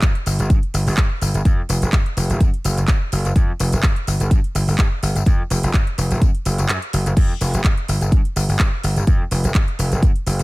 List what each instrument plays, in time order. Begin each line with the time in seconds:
0.02 kick, clap, closed hi-hat, tambourine
0.15 closed hi-hat
0.26 slap bass G1, open hi-hat, tambourine
0.39 slap bass G1, closed hi-hat, tambourine
0.50 slap bass G2, kick, closed hi-hat, tambourine
0.63 closed hi-hat
0.74 slap bass G1, open hi-hat, tambourine
0.87 slap bass G1, open hi-hat, tambourine
0.97 kick, clap, closed hi-hat
1.21 slap bass G1, open hi-hat, tambourine
1.34 slap bass G1, closed hi-hat, tambourine
1.45 kick, closed hi-hat, tambourine
1.69 slap bass F1, open hi-hat, tambourine
1.82 slap bass F1, closed hi-hat, tambourine
1.93 kick, clap, closed hi-hat, tambourine
2.06 closed hi-hat
2.17 slap bass F1, open hi-hat, tambourine
2.30 slap bass F1, closed hi-hat, tambourine
2.40 slap bass F#2, kick, closed hi-hat, tambourine
2.54 closed hi-hat
2.64 slap bass F#1, open hi-hat, tambourine
2.77 slap bass F#1, closed hi-hat, tambourine
2.88 kick, clap, closed hi-hat, tambourine
3.12 slap bass F#1, open hi-hat, tambourine
3.25 slap bass F#1, closed hi-hat, tambourine
3.36 slap bass F2, kick, closed hi-hat, tambourine
3.60 slap bass F1, open hi-hat, tambourine
3.72 slap bass F1, closed hi-hat, tambourine
3.83 slap bass F2, kick, clap, closed hi-hat
3.96 closed hi-hat
4.07 slap bass G1, open hi-hat, tambourine
4.20 slap bass G1, closed hi-hat, tambourine
4.31 slap bass G2, kick, closed hi-hat, tambourine
4.44 closed hi-hat
4.55 slap bass G1, open hi-hat, tambourine
4.68 slap bass G1, open hi-hat, tambourine
4.78 kick, clap, closed hi-hat, tambourine
5.02 slap bass G1, open hi-hat, tambourine
5.15 slap bass G1, closed hi-hat, tambourine
5.26 slap bass F2, kick, closed hi-hat, tambourine
5.50 slap bass F1, open hi-hat, tambourine
5.63 slap bass F1, closed hi-hat, tambourine
5.74 slap bass F2, kick, clap, closed hi-hat
5.87 closed hi-hat
5.98 slap bass F1, open hi-hat, tambourine
6.11 slap bass F1, closed hi-hat, tambourine
6.21 slap bass F#2, kick, closed hi-hat, tambourine
6.35 closed hi-hat
6.45 slap bass F#1, open hi-hat, tambourine
6.58 slap bass F#1, closed hi-hat, tambourine
6.69 slap bass F#2, clap, closed hi-hat, tambourine
6.82 closed hi-hat
6.93 slap bass F#1, open hi-hat, tambourine
7.06 slap bass F#1, closed hi-hat, tambourine
7.17 kick, closed hi-hat, crash, tambourine
7.41 slap bass F1, open hi-hat, tambourine
7.54 slap bass F1, closed hi-hat, tambourine
7.64 slap bass F2, kick, clap, closed hi-hat
7.78 closed hi-hat
7.88 slap bass G1, open hi-hat, tambourine
8.01 slap bass G1, closed hi-hat, tambourine
8.12 slap bass G2, kick, closed hi-hat
8.25 closed hi-hat
8.36 slap bass G1, open hi-hat, tambourine
8.49 slap bass G1, open hi-hat, tambourine
8.59 slap bass G2, kick, clap, closed hi-hat
8.83 slap bass G1, open hi-hat, tambourine
8.96 slap bass G1, closed hi-hat, tambourine
9.07 kick, closed hi-hat
9.31 slap bass F1, open hi-hat, tambourine
9.44 slap bass F1, closed hi-hat, tambourine
9.55 slap bass F2, kick, clap, closed hi-hat
9.68 closed hi-hat
9.79 slap bass F1, open hi-hat, tambourine
9.92 slap bass F1, closed hi-hat, tambourine
10.03 slap bass F#2, kick, closed hi-hat, tambourine
10.16 closed hi-hat
10.26 slap bass F#1, open hi-hat, tambourine
10.39 slap bass F#1, closed hi-hat, tambourine